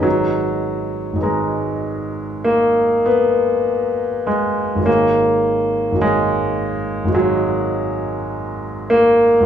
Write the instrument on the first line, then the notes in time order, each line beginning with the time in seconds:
grand piano
Already playing: G#1 D#4 G#4
0.00 F#3 B4 A#5
1.13 G#1 D#4
1.18 G#4 B4
1.23 G#3 A#5
2.44 A#3
3.06 B3
4.27 G#3
4.75 G#1 F#4
4.80 G#4 C#5
4.85 A#3 G#5
5.92 G#1 F#4
5.96 G#4 C#5
6.01 G#3 G#5
7.04 G#1 F#4
7.10 G#4 C#5
7.14 F#3 G#5
8.90 A#3
9.40 C#2 F4